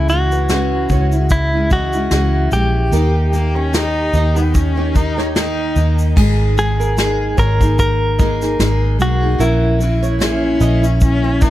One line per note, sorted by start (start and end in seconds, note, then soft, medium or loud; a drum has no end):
0.00 0.86 C#2 loud
0.00 0.10 E4 medium
0.09 0.48 E3 medium
0.09 0.49 G#3 medium
0.09 0.50 C#4 medium
0.09 0.50 E4 medium
0.09 1.31 F#4 loud
0.09 shaker soft
0.31 0.71 B4 medium
0.31 shaker soft
0.49 0.90 C#3 medium
0.49 0.89 E3 medium
0.49 0.90 G#3 medium
0.49 0.91 C#4 medium
0.49 0.91 E4 medium
0.49 snare loud
0.49 shaker medium
0.89 2.08 C#2 loud
0.89 1.12 E3 medium
0.89 1.13 G#3 medium
0.89 1.13 C#4 medium
0.89 1.11 E4 medium
0.89 1.12 C#5 medium
0.89 kick medium
0.89 shaker soft
1.12 1.54 G#3 soft
1.12 1.54 C#4 soft
1.12 1.52 E4 medium
1.12 shaker soft
1.30 1.72 E4 medium
1.30 kick medium
1.30 shaker medium
1.53 1.70 G#3 soft
1.53 1.71 C#4 soft
1.53 1.71 E4 medium
1.70 1.93 E3 medium
1.70 1.94 G#3 medium
1.70 1.93 C#4 medium
1.70 2.49 F#4 loud
1.70 2.10 D#5 medium
1.70 kick medium
1.70 shaker medium
1.93 2.11 G#3 soft
1.93 2.12 C#4 medium
1.93 2.11 E4 medium
1.93 shaker soft
2.11 2.49 C#2 medium
2.11 2.52 C#3 medium
2.11 2.49 E3 medium
2.11 2.50 G#3 medium
2.11 2.51 C#4 medium
2.11 2.52 E4 medium
2.11 snare loud
2.11 shaker medium
2.51 2.89 A#1 medium
2.51 2.91 E3 medium
2.51 2.92 G#3 medium
2.51 2.93 C#4 medium
2.51 2.93 E4 medium
2.51 5.32 G4 medium
2.51 shaker medium
2.92 4.10 D#2 loud
2.92 3.31 D#3 medium
2.92 3.32 A#3 medium
2.92 3.33 D#4 medium
2.92 3.34 G4 medium
2.92 3.31 A#4 medium
2.92 shaker medium
3.32 3.71 D#3 medium
3.32 3.56 A#3 medium
3.32 3.72 A#3 medium
3.32 3.73 D#4 medium
3.32 3.73 G4 medium
3.32 shaker soft
3.55 3.75 C#4 medium
3.55 3.94 C#5 medium
3.73 4.12 D#3 medium
3.73 4.13 A#3 medium
3.73 4.38 D#4 loud
3.73 4.14 D#4 medium
3.73 4.15 G4 medium
3.73 snare loud
3.73 shaker medium
4.13 5.72 D#2 loud
4.13 4.36 D#3 medium
4.13 4.36 A#3 medium
4.13 4.35 D#4 medium
4.13 4.33 G4 medium
4.13 4.36 D#5 medium
4.13 shaker soft
4.35 4.77 A#3 medium
4.35 4.55 B3 medium
4.35 4.76 D#4 medium
4.35 4.75 G4 medium
4.35 shaker medium
4.54 4.96 C#4 loud
4.54 kick medium
4.54 shaker medium
4.76 4.93 A#3 medium
4.76 4.94 D#4 medium
4.76 4.95 G4 medium
4.76 4.95 C#5 medium
4.93 5.17 D#3 medium
4.93 5.17 A#3 medium
4.93 5.34 D#4 loud
4.93 5.17 D#4 medium
4.93 5.15 G4 medium
4.93 kick medium
4.93 shaker medium
5.17 5.34 A#3 soft
5.17 5.35 D#4 medium
5.17 5.35 G4 medium
5.17 5.35 C#5 medium
5.17 snare soft
5.35 5.74 D#3 medium
5.35 5.75 A#3 medium
5.35 6.12 D#4 loud
5.35 5.76 D#4 medium
5.35 5.77 G4 loud
5.35 snare loud
5.35 shaker medium
5.75 6.13 D#2 medium
5.75 6.15 D#3 medium
5.75 6.15 A#3 medium
5.75 6.16 D#4 medium
5.75 6.18 G4 medium
5.75 shaker medium
5.99 shaker medium
6.16 7.34 G#1 loud
6.16 6.55 G#3 medium
6.16 6.57 A#3 medium
6.16 6.58 D#4 medium
6.16 6.55 G#4 medium
6.16 6.58 G#4 loud
6.16 kick loud
6.16 crash loud
6.57 6.95 G#3 medium
6.57 6.96 A#3 medium
6.57 6.97 D#4 medium
6.57 7.39 G#4 loud
6.57 6.97 G#4 medium
6.57 shaker soft
6.80 7.18 A#4 medium
6.80 shaker soft
6.96 7.36 G#3 medium
6.96 7.37 A#3 medium
6.96 7.38 D#4 medium
6.96 7.38 G#4 loud
6.96 snare loud
6.96 shaker medium
7.37 8.55 G#1 loud
7.37 7.60 G#3 medium
7.37 7.60 A#3 medium
7.37 7.59 D#4 medium
7.37 7.58 G#4 medium
7.37 7.78 A#4 loud
7.37 7.59 C#5 medium
7.37 kick loud
7.37 shaker medium
7.59 8.19 A#3 soft
7.59 8.19 D#4 medium
7.59 8.18 G#4 medium
7.59 kick medium
7.59 shaker medium
7.79 8.96 A#4 loud
7.79 kick medium
7.79 shaker medium
8.19 8.41 G#3 medium
8.19 8.41 A#3 medium
8.19 8.41 D#4 medium
8.19 8.39 G#4 medium
8.19 8.57 D#5 medium
8.19 kick loud
8.19 shaker medium
8.40 8.59 A#3 soft
8.40 8.59 D#4 medium
8.40 8.59 G#4 medium
8.40 snare soft
8.40 shaker soft
8.59 8.97 G#1 medium
8.59 8.97 G#3 medium
8.59 8.98 A#3 medium
8.59 9.00 D#4 medium
8.59 9.01 G#4 medium
8.59 snare loud
8.59 shaker medium
8.99 9.37 B1 loud
8.99 9.21 G#3 medium
8.99 9.22 A#3 medium
8.99 9.21 D#4 medium
8.99 9.42 F#4 medium
8.99 9.19 G#4 medium
8.99 shaker medium
9.20 9.38 A#3 soft
9.20 9.39 D#4 soft
9.20 9.39 G#4 medium
9.38 10.57 A#1 loud
9.38 9.80 A#2 medium
9.38 9.78 E3 medium
9.38 9.79 A#3 medium
9.38 9.80 C#4 medium
9.38 9.80 E4 medium
9.38 11.50 E4 medium
9.38 9.78 A#4 medium
9.38 shaker medium
9.79 10.19 E3 medium
9.79 10.19 A#3 medium
9.79 10.20 C#4 medium
9.79 10.20 E4 medium
9.79 shaker soft
10.03 10.41 C#5 medium
10.03 shaker soft
10.19 10.60 A#2 medium
10.19 10.58 E3 medium
10.19 10.59 A#3 medium
10.19 10.98 C#4 loud
10.19 10.60 C#4 medium
10.19 10.61 E4 loud
10.19 snare loud
10.19 shaker medium
10.59 11.50 A#1 loud
10.59 10.82 E3 medium
10.59 10.83 A#3 medium
10.59 10.82 C#4 medium
10.59 10.80 E4 medium
10.59 10.82 D#5 medium
10.59 shaker medium
10.81 11.40 A#3 medium
10.81 11.41 C#4 medium
10.81 11.41 E4 medium
10.81 shaker medium
11.01 11.43 C#4 loud
11.01 kick medium
11.01 shaker medium
11.24 11.41 C#5 medium
11.40 11.50 E3 medium
11.40 11.50 A#3 medium
11.40 11.50 C#4 medium
11.40 11.50 D#4 loud
11.40 11.50 E4 medium
11.40 kick loud
11.40 shaker medium